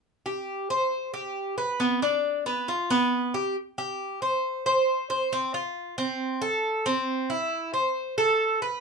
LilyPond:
\new Staff \with { instrumentName = "Cuban tres" } { \time 4/4 \key c \major \tempo 4 = 136 r8 g'4 c''4 g'4 b'8 | b8 d'4 b8 f'8 b4 g'8 | r8 g'4 c''4 c''4 c''8 | c'8 f'4 c'4 a'4 c'8~ |
c'8 e'4 c''4 a'4 b'8 | }